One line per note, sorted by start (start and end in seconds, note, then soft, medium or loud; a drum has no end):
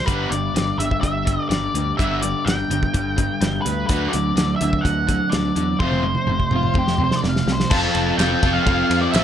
0.06 0.25 G1 medium
0.06 0.30 G2 medium
0.06 0.30 D3 medium
0.06 0.29 G3 medium
0.06 0.31 G3 medium
0.06 0.30 B3 medium
0.06 0.30 D4 loud
0.06 0.32 B4 medium
0.06 kick loud
0.06 closed hi-hat medium
0.30 0.48 G1 medium
0.30 0.54 G2 medium
0.30 0.54 D3 medium
0.30 0.53 G3 medium
0.30 0.53 D4 medium
0.30 0.78 D5 medium
0.30 closed hi-hat medium
0.54 0.72 G1 medium
0.54 0.77 G2 medium
0.54 0.77 D3 medium
0.54 0.76 G3 medium
0.54 0.77 D4 medium
0.54 snare loud
0.54 closed hi-hat medium
0.78 0.96 G1 medium
0.78 1.01 G2 medium
0.78 1.01 D3 medium
0.78 1.00 G3 medium
0.78 1.00 D4 medium
0.78 1.00 E5 medium
0.78 closed hi-hat medium
0.91 kick medium
1.01 1.37 G1 loud
1.01 1.25 G2 medium
1.01 1.25 D3 medium
1.01 1.24 G3 medium
1.01 1.24 D4 medium
1.01 1.49 E5 medium
1.01 kick medium
1.01 closed hi-hat medium
1.25 1.49 G2 medium
1.25 1.49 D3 medium
1.25 1.48 G3 medium
1.25 1.48 D4 medium
1.25 kick medium
1.25 closed hi-hat medium
1.49 1.68 G1 medium
1.49 1.73 G2 medium
1.49 1.73 D3 medium
1.49 1.72 G3 medium
1.49 1.72 D4 medium
1.49 1.97 D5 medium
1.49 snare medium
1.49 closed hi-hat medium
1.74 1.92 D2 medium
1.74 1.96 G2 medium
1.74 1.97 D3 medium
1.74 1.96 G3 medium
1.74 1.96 D4 medium
1.74 closed hi-hat medium
1.97 2.33 G1 loud
1.97 2.21 G2 medium
1.97 2.22 D3 medium
1.97 2.20 G3 medium
1.97 2.22 G3 medium
1.97 2.21 B3 medium
1.97 2.21 D4 medium
1.97 2.21 E5 medium
1.97 kick loud
1.97 closed hi-hat medium
2.22 2.44 G2 medium
2.22 2.44 D3 medium
2.22 2.44 G3 medium
2.22 2.44 D4 medium
2.22 2.47 D5 medium
2.22 closed hi-hat medium
2.45 2.63 G1 medium
2.45 2.68 G2 medium
2.45 2.68 D3 medium
2.45 2.68 G3 medium
2.45 2.68 D4 medium
2.45 3.68 G5 medium
2.45 snare loud
2.45 closed hi-hat medium
2.70 2.87 G1 medium
2.70 2.92 G2 medium
2.70 2.92 D3 medium
2.70 2.92 G3 medium
2.70 2.92 D4 medium
2.70 closed hi-hat medium
2.83 kick medium
2.94 3.29 G1 medium
2.94 3.16 G2 medium
2.94 3.16 D3 medium
2.94 3.15 G3 medium
2.94 3.16 D4 medium
2.94 kick loud
2.94 closed hi-hat medium
3.16 3.40 G2 medium
3.16 3.40 D3 medium
3.16 3.39 G3 medium
3.16 3.39 D4 medium
3.16 kick medium
3.16 closed hi-hat medium
3.41 3.59 G1 medium
3.41 3.64 G2 medium
3.41 3.64 D3 medium
3.41 3.63 G3 medium
3.41 3.63 D4 medium
3.41 snare loud
3.41 closed hi-hat medium
3.62 3.87 G3 medium
3.62 3.87 D4 medium
3.62 3.86 B4 medium
3.62 closed hi-hat medium
3.66 3.83 D2 medium
3.66 3.87 G2 medium
3.66 3.88 D3 medium
3.87 4.07 D2 medium
3.87 4.11 D3 medium
3.87 4.12 D3 medium
3.87 4.13 F#3 medium
3.87 4.11 D4 medium
3.87 4.12 F#4 medium
3.87 4.13 B4 medium
3.87 kick loud
3.87 closed hi-hat medium
3.91 4.13 A3 medium
4.08 4.56 D5 medium
4.12 4.31 D2 medium
4.12 4.34 D3 medium
4.12 4.35 D3 medium
4.12 4.35 F#3 medium
4.12 4.35 D4 medium
4.12 closed hi-hat medium
4.36 4.54 D2 medium
4.36 4.58 D3 medium
4.36 4.59 D3 medium
4.36 4.59 F#3 medium
4.36 4.58 D4 medium
4.36 snare loud
4.36 closed hi-hat medium
4.56 4.83 E5 medium
4.61 4.78 D2 medium
4.61 4.83 D3 medium
4.61 4.83 F#3 medium
4.61 4.83 D4 medium
4.61 closed hi-hat medium
4.73 kick medium
4.81 5.19 D2 medium
4.81 5.06 D3 medium
4.81 5.07 D3 medium
4.81 5.06 D4 medium
4.81 5.32 F#5 medium
4.81 kick medium
4.85 5.07 F#3 medium
4.85 closed hi-hat medium
5.07 5.30 D3 medium
5.07 5.31 D3 medium
5.07 5.31 F#3 medium
5.07 5.30 D4 medium
5.07 kick medium
5.07 closed hi-hat medium
5.30 5.50 D2 medium
5.30 5.54 D3 medium
5.30 5.55 F#3 medium
5.30 5.54 D4 medium
5.30 5.76 D5 medium
5.30 snare loud
5.30 closed hi-hat medium
5.56 5.73 E2 medium
5.56 5.78 D3 medium
5.56 5.79 F#3 medium
5.56 5.78 D4 medium
5.56 closed hi-hat soft
5.79 6.15 F1 medium
5.79 6.03 F2 medium
5.79 6.04 C3 medium
5.79 6.03 F3 medium
5.79 6.04 F3 medium
5.79 6.03 A3 medium
5.79 6.03 C4 medium
5.79 7.19 C5 medium
5.79 kick loud
5.92 high tom soft
6.03 6.26 F2 medium
6.03 6.27 C3 medium
6.03 6.26 F3 medium
6.03 6.26 A3 medium
6.03 high tom medium
6.15 high tom medium
6.27 6.45 F1 medium
6.27 6.50 F2 medium
6.27 6.51 C3 medium
6.27 6.49 F3 medium
6.27 6.50 A3 loud
6.27 mid tom medium
6.40 kick medium
6.51 6.69 F1 medium
6.51 6.74 F2 medium
6.51 6.74 C3 medium
6.51 6.74 F3 medium
6.51 6.74 A3 medium
6.51 mid tom medium
6.56 6.77 F4 medium
6.63 mid tom medium
6.74 7.10 F1 medium
6.74 6.97 F2 medium
6.74 6.98 C3 medium
6.74 6.97 F3 medium
6.74 6.98 A3 medium
6.74 kick loud
6.74 mid tom medium
6.79 7.01 G4 medium
6.88 snare medium
6.98 7.21 F2 medium
6.98 7.22 C3 medium
6.98 7.21 F3 medium
6.98 7.21 A3 medium
6.98 mid tom medium
7.04 7.16 C5 medium
7.11 snare medium
7.16 7.26 D5 medium
7.22 7.41 F1 medium
7.22 7.45 F2 medium
7.22 7.46 C3 medium
7.22 7.45 F3 medium
7.22 7.45 A3 medium
7.22 snare medium
7.29 7.50 F5 medium
7.36 snare medium
7.46 7.64 C2 medium
7.46 7.69 F2 medium
7.46 7.69 C3 medium
7.46 7.69 F3 medium
7.46 7.69 A3 medium
7.46 snare medium
7.53 7.73 C5 medium
7.60 snare medium
7.70 7.87 F1 medium
7.70 8.17 F3 loud
7.70 8.18 F3 medium
7.70 8.18 C4 medium
7.70 8.19 C4 medium
7.70 8.18 F4 loud
7.70 8.19 F4 loud
7.70 8.19 A4 loud
7.70 8.20 A4 loud
7.70 8.17 A5 loud
7.70 kick loud
7.70 crash loud
7.95 8.11 F1 medium
7.95 ride medium
8.17 8.34 F1 medium
8.17 8.40 F3 medium
8.17 8.43 F3 medium
8.17 8.41 C4 medium
8.17 8.43 C4 medium
8.17 8.41 F4 loud
8.17 8.44 F4 medium
8.17 8.42 A4 loud
8.17 8.44 A4 loud
8.17 8.55 G5 medium
8.17 snare loud
8.17 clap loud
8.17 ride medium
8.42 8.58 F1 medium
8.42 8.65 F3 medium
8.42 8.66 F3 medium
8.42 8.65 C4 medium
8.42 8.66 C4 medium
8.42 8.65 F4 medium
8.42 8.67 F4 medium
8.42 8.66 A4 medium
8.42 8.67 A4 medium
8.42 kick medium
8.42 ride medium
8.53 8.62 F5 medium
8.64 8.82 F1 loud
8.64 9.13 F3 medium
8.64 9.13 C4 medium
8.64 9.14 C4 loud
8.64 9.14 F4 loud
8.64 9.15 A4 loud
8.64 9.01 F5 loud
8.64 kick loud
8.64 ride loud
8.68 9.14 F4 loud
8.68 9.15 A4 loud
8.90 9.06 F2 medium
8.90 ride medium
9.01 9.06 D5 medium
9.12 9.24 A1 medium
9.12 9.24 F3 medium
9.12 9.24 C4 medium
9.12 9.24 F4 medium
9.12 9.24 A4 medium
9.12 9.24 A4 loud
9.12 9.24 E5 medium
9.12 snare loud
9.12 clap loud
9.12 ride medium